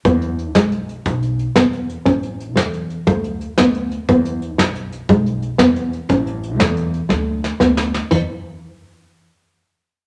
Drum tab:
CC |------------|------------|------------|------------|
HH |xxxxxxxxxxxx|xxxxxxxxxxxx|xxxxxxxxxxxx|xxxxxx------|
SD |---o-----o--|---o-----o--|---o-----o--|---o--o-oooo|
BD |o-----o-----|o-----o-----|o-----o-----|o-----o-----|

CC |x-----------|
HH |------------|
SD |------------|
BD |o-----------|